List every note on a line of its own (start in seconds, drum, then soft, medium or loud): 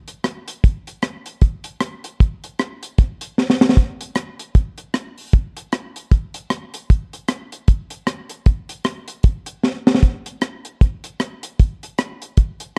0.08 closed hi-hat medium
0.24 cross-stick loud
0.24 closed hi-hat medium
0.48 closed hi-hat medium
0.64 kick loud
0.64 closed hi-hat medium
0.87 closed hi-hat medium
1.02 cross-stick loud
1.02 closed hi-hat medium
1.26 closed hi-hat medium
1.41 kick loud
1.41 closed hi-hat medium
1.64 closed hi-hat medium
1.81 cross-stick loud
1.81 closed hi-hat medium
2.04 closed hi-hat loud
2.20 kick medium
2.20 closed hi-hat medium
2.44 closed hi-hat medium
2.59 cross-stick loud
2.59 closed hi-hat medium
2.83 closed hi-hat medium
2.98 kick loud
2.98 closed hi-hat medium
3.21 closed hi-hat medium
3.38 snare medium
3.50 snare medium
3.61 snare loud
3.69 snare medium
3.77 kick medium
3.77 closed hi-hat medium
4.01 closed hi-hat medium
4.15 cross-stick loud
4.15 closed hi-hat medium
4.39 closed hi-hat medium
4.55 kick loud
4.55 closed hi-hat medium
4.78 closed hi-hat medium
4.94 cross-stick loud
4.94 closed hi-hat medium
5.18 open hi-hat medium
5.33 kick loud
5.33 closed hi-hat medium
5.57 closed hi-hat medium
5.72 cross-stick loud
5.72 closed hi-hat medium
5.96 closed hi-hat medium
6.12 kick loud
6.12 closed hi-hat medium
6.34 closed hi-hat medium
6.50 cross-stick loud
6.50 closed hi-hat medium
6.74 closed hi-hat loud
6.90 kick medium
6.90 closed hi-hat medium
7.13 closed hi-hat medium
7.28 cross-stick loud
7.28 closed hi-hat medium
7.52 closed hi-hat medium
7.68 kick medium
7.68 closed hi-hat medium
7.90 closed hi-hat medium
8.07 cross-stick loud
8.07 closed hi-hat medium
8.29 closed hi-hat medium
8.46 kick loud
8.46 closed hi-hat medium
8.69 closed hi-hat medium
8.84 cross-stick loud
8.84 closed hi-hat medium
9.08 closed hi-hat medium
9.23 kick loud
9.23 closed hi-hat medium
9.46 closed hi-hat loud
9.63 snare medium
9.87 snare loud
9.95 snare medium
10.03 kick medium
10.03 closed hi-hat medium
10.26 closed hi-hat medium
10.41 cross-stick loud
10.41 closed hi-hat medium
10.65 closed hi-hat medium
10.81 kick loud
10.81 closed hi-hat medium
11.04 closed hi-hat medium
11.20 cross-stick loud
11.20 closed hi-hat medium
11.43 closed hi-hat medium
11.59 kick medium
11.59 closed hi-hat medium
11.83 closed hi-hat medium
11.98 cross-stick loud
11.98 closed hi-hat medium
12.22 closed hi-hat medium
12.37 kick loud
12.37 closed hi-hat medium
12.60 closed hi-hat medium